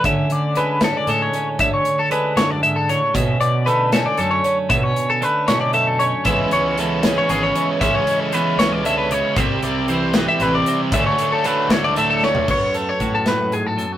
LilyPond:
<<
  \new Staff \with { instrumentName = "Clean electric guitar" } { \time 6/8 \key d \lydian \tempo 4. = 77 e''8 d''8 b'8 a'16 d''16 a'16 cis''8 r16 | e''16 cis''8 a'16 b'8 cis''16 d''16 e''16 a'16 cis''8 | e''8 d''8 b'8 a'16 d''16 a'16 cis''8 r16 | e''16 cis''8 a'16 b'8 cis''16 d''16 e''16 a'16 cis''8 |
e''8 cis''8 a'8 gis'16 cis''16 gis'16 cis''8 r16 | e''16 cis''8 a'16 b'8 cis''16 d''16 e''16 b'16 cis''8 | e''8 d''8 c''8 b'16 e''16 b'16 d''8 r16 | e''16 cis''8 a'16 b'8 cis''16 d''16 e''16 a'16 cis''8 |
cis''8 a'16 cis''8 a'16 b'8 gis'16 a'8 fis'16 | }
  \new Staff \with { instrumentName = "Overdriven electric guitar" } { \time 6/8 \key d \lydian r2. | r2. | r2. | r2. |
<cis gis cis' e'>8 <gis cis' e'>8 <cis gis cis' e'>8 <cis gis cis' e'>8 <cis gis cis' e'>4 | <cis gis cis' e'>8 <gis cis' e'>8 <cis gis cis' e'>8 <cis gis cis' e'>8 <cis gis cis' e'>4 | <c g c' e'>8 <g c' e'>8 <c g c' e'>8 <c g c' e'>8 <c g c' e'>4 | <d fis a d'>8 <fis a d'>8 <d fis a d'>8 <d fis a d'>8 <d fis a d'>4 |
r2. | }
  \new Staff \with { instrumentName = "Clean electric guitar" } { \clef bass \time 6/8 \key d \lydian << { <cis' d'>4 gis8 cis'8 gis8 cis'8 | cis'4 gis2 | cis'4 a8 cis'8 a8 cis'8 | cis'4 a8 cis'8 a8 cis'8 |
<e b cis' e'>4 b8 cis'8 b8 cis'8 | cis'4 b2 | c'4. c'4 c'8 | cis'4 a4 a8 cis'8 |
b8 a2~ a8 | } \\ { d,4 d4 a,4 | d,4 d8 fis,8 gis,8 a,8 | b,4 d4 fis,4 | b,4 d4 fis,4 |
cis4 e4 cis4 | cis4 e8 e8 d8 cis8 | c4 e4 c4 | d,4 d4 a,4 |
fis,4 fis8 a,8 gis,8 fis,8 | } >> }
  \new Staff \with { instrumentName = "Picked electric bass" } { \clef bass \time 6/8 \key d \lydian d8 d4. a,8 r8 | d8 r4 d4. | b,8 b,4. fis,8 r8 | b,8 r4 b,4. |
cis,8 cis,4. gis,,8 r8 | cis,8 r4 cis,4. | c,8 c,4. a,,8 r8 | d,8 r4 d,4. |
fis,4 a,2 | }
  \new DrumStaff \with { instrumentName = "Drums" } \drummode { \time 6/8 <hh bd>8 hh8 hh8 <hh sn>8 hh8 hh8 | <hh bd>8 hh8 hh8 <hh sn>8 hh8 hh8 | <hh bd>8 hh8 hh8 <hh sn>8 hh8 hh8 | <hh bd>8 hh8 hh8 <hh sn>8 hh8 hh8 |
<hh bd>8 hh8 hh8 <hh sn>8 hh8 hh8 | <hh bd>8 hh8 hh8 <hh sn>8 hh8 hh8 | <hh bd>8 hh8 hh8 <hh sn>8 hh8 hh8 | <hh bd>8 hh8 hh8 <hh sn>8 hh8 sn16 tomfh16 |
<cymc bd>8 hh8 <hh bd>8 <hh sn>8 hh8 hh8 | }
>>